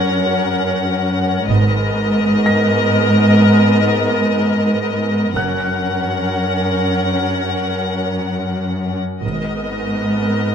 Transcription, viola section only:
0.00 1.45 C#4 medium
0.00 1.45 A#4 soft
1.48 5.32 B3 medium
1.48 5.32 A#4 medium
5.35 8.99 C#4 soft
5.35 8.99 A#4 soft
9.23 10.55 B3 soft
9.23 10.55 A#4 soft

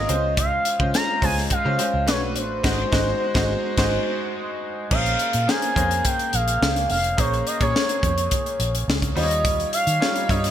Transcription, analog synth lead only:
0.00 0.34 D#5 loud
0.38 0.91 F5 loud
0.95 1.21 A#5 loud
1.24 1.36 G#5 medium
1.52 2.04 F5 medium
2.08 2.21 C#5 medium
2.37 4.59 C5 medium
4.92 5.50 F5 loud
5.49 6.07 G#5 loud
6.06 6.36 G5 loud
6.34 6.90 F5 loud
6.91 7.20 F5 medium
7.19 7.47 C#5 loud
7.47 7.60 D#5 medium
7.62 8.70 C#5 medium
9.17 9.69 D#5 medium
9.74 10.32 F5 medium
10.30 10.51 D#5 medium

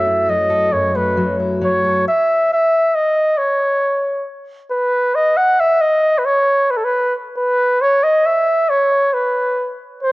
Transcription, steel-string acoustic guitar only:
0.00 0.70 F#2 medium
0.00 0.28 F#3 medium
0.00 0.94 A3 medium
0.00 0.49 A4 medium
0.07 0.70 E4 medium
0.29 1.17 F#3 medium
0.50 0.70 A4 medium
0.72 2.03 F#2 medium
0.95 2.06 A3 medium
1.17 1.60 F#3 medium
1.40 2.03 E4 medium
1.61 2.03 F#3 medium
1.85 2.04 A4 medium

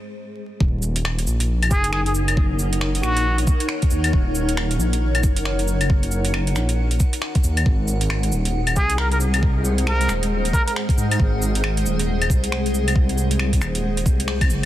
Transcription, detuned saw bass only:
0.60 1.26 D#1 loud
1.27 1.73 A#1 medium
1.71 3.02 F#1 medium
3.03 3.46 A#1 loud
3.91 4.12 D#2 medium
4.13 4.78 D#1 loud
4.79 5.25 A#1 medium
5.24 6.55 F#1 medium
6.56 6.99 A#1 medium
7.44 7.65 D#2 loud
7.66 8.31 G#1 loud
8.32 8.78 D#1 medium
8.77 10.08 C2 medium
10.09 10.52 D#1 medium
10.97 11.18 G#2 medium
11.20 11.85 G#1 loud
11.86 12.31 D#1 loud
12.30 13.61 C2 medium
13.62 14.07 D#1 medium
14.06 14.51 C2 medium
14.50 14.65 F#1 medium

